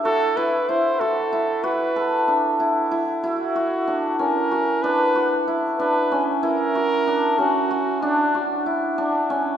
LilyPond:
<<
  \new Staff \with { instrumentName = "Flugelhorn" } { \time 5/8 \key b \phrygian \tempo 4 = 94 a'8 b'8 c''8 a'4 | b'4. r4 | \key d \major fis'4. ais'4 | b'4 r8 b'8. r16 |
ais'4. fis'4 | d'4 r8 d'8. r16 | }
  \new Staff \with { instrumentName = "Hammered dulcimer" } { \time 5/8 \key b \phrygian fis'8 e'8 e'8 fis'8 e'8 | fis'8 a'8 d'8 e'8 e'8 | \key d \major e'8 fis'8 d'8 cis'8 fis'8 | d'8 fis'8 e'8 d'8 cis'8 |
e'8 fis'8 d'8 cis'8 fis'8 | d'8 fis'8 e'8 d'8 cis'8 | }
>>